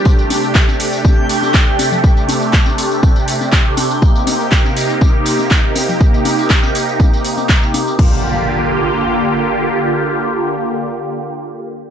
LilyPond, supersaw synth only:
\new Staff \with { instrumentName = "Supersaw synth" } { \time 4/4 \key g \minor \tempo 4 = 121 << { <a d' g'>1~ | <a d' g'>1 | <bes ees' g'>1~ | <bes ees' g'>1 |
<d bes f' g'>1~ | <d bes f' g'>1 | } \\ { c1~ | c1~ | c1~ | c1 |
r1 | r1 | } >> }